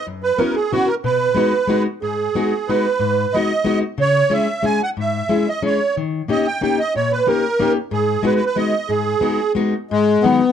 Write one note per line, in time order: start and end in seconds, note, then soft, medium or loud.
0.07 0.31 F#2 medium
0.24 0.40 B4 medium
0.38 0.55 B3 medium
0.38 0.55 C#4 medium
0.38 0.55 E4 medium
0.38 0.56 F#4 medium
0.38 0.55 A#4 medium
0.55 0.72 G#4 medium
0.72 0.88 B3 medium
0.72 0.88 C#4 medium
0.72 0.88 E4 medium
0.72 0.89 F#4 medium
0.88 0.95 A#4 medium
1.04 1.28 B2 medium
1.04 1.83 B4 medium
1.34 1.52 G#3 medium
1.34 1.53 B3 medium
1.34 1.53 D#4 medium
1.34 1.53 F#4 medium
1.67 1.85 G#3 medium
1.67 1.86 B3 medium
1.67 1.86 D#4 medium
1.67 1.86 F#4 medium
2.02 2.27 G#2 medium
2.02 2.71 G#4 medium
2.35 2.52 G#3 medium
2.35 2.52 B3 medium
2.35 2.53 D#4 medium
2.35 2.53 F#4 medium
2.68 2.86 G#3 medium
2.68 2.86 B3 medium
2.68 2.85 D#4 medium
2.68 2.86 F#4 medium
2.68 3.36 B4 medium
2.99 3.25 G#2 medium
3.34 3.51 G#3 medium
3.34 3.51 B3 medium
3.34 3.51 D#4 medium
3.34 3.51 F#4 medium
3.34 3.79 D#5 medium
3.64 3.82 G#3 medium
3.64 3.82 B3 medium
3.64 3.83 D#4 medium
3.64 3.83 F#4 medium
3.98 4.22 C#3 medium
3.98 4.33 C#5 loud
4.30 4.47 G#3 medium
4.30 4.47 C#4 medium
4.30 4.47 E4 medium
4.30 4.47 G#4 medium
4.30 4.65 E5 medium
4.63 4.80 G#3 medium
4.63 4.80 C#4 medium
4.63 4.80 E4 medium
4.63 4.80 G#4 medium
4.63 4.81 G#5 loud
4.83 4.90 F#5 medium
4.97 5.21 G#2 medium
4.97 5.49 E5 medium
5.29 5.46 G#3 medium
5.29 5.46 C#4 medium
5.29 5.46 E4 medium
5.29 5.46 G#4 medium
5.49 5.63 D#5 medium
5.62 5.79 G#3 medium
5.62 5.79 C#4 medium
5.62 5.79 E4 medium
5.62 5.79 G#4 medium
5.62 5.95 C#5 medium
5.97 6.21 D#3 medium
6.28 6.45 A#3 medium
6.28 6.46 C#4 medium
6.28 6.45 D#4 medium
6.28 6.46 G4 medium
6.28 6.47 D#5 medium
6.47 6.61 G5 loud
6.61 6.78 A#3 medium
6.61 6.78 C#4 medium
6.61 6.78 D#4 medium
6.61 6.79 G4 medium
6.61 6.79 G5 medium
6.79 6.94 D#5 medium
6.96 7.19 A#2 medium
6.96 7.12 C#5 medium
7.12 7.28 B4 medium
7.27 7.43 A#3 medium
7.27 7.43 C#4 medium
7.27 7.43 D#4 medium
7.27 7.44 G4 medium
7.27 7.73 A#4 medium
7.59 7.75 A#3 medium
7.59 7.76 C#4 medium
7.59 7.76 D#4 medium
7.59 7.77 G4 medium
7.91 8.16 G#2 medium
7.91 8.26 G#4 medium
8.23 8.40 G#3 medium
8.23 8.40 B3 medium
8.23 8.40 D#4 medium
8.23 8.41 F#4 medium
8.23 8.34 B4 medium
8.36 8.44 B4 medium
8.46 8.57 B4 medium
8.56 8.73 G#3 medium
8.56 8.73 B3 medium
8.56 8.73 D#4 medium
8.56 8.73 F#4 medium
8.56 8.91 D#5 medium
8.89 9.14 G#2 medium
8.89 9.52 G#4 medium
9.21 9.39 G#3 medium
9.21 9.39 B3 medium
9.21 9.39 D#4 medium
9.21 9.39 F#4 medium
9.55 9.73 G#3 medium
9.55 9.73 B3 medium
9.55 9.74 D#4 medium
9.55 9.73 F#4 medium
9.91 10.16 G#2 medium
9.91 10.25 G#3 loud
10.22 10.41 D#3 medium
10.22 10.41 F#3 medium
10.22 10.41 G#3 medium
10.22 10.52 B3 loud
10.22 10.41 B3 medium
10.22 10.41 D#4 medium